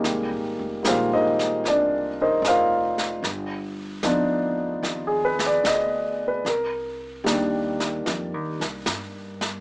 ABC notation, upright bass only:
X:1
M:4/4
L:1/8
Q:"Swing" 1/4=75
K:Gphr
V:1 name="Upright bass" clef=bass
(3C,, A,,, F,,, B,,,2 C,,2 F,,,2 | G,,,2 D,,2 E,,2 D,,2 | C,,2 E,,2 (3F,, E,, C,, G,,2 |]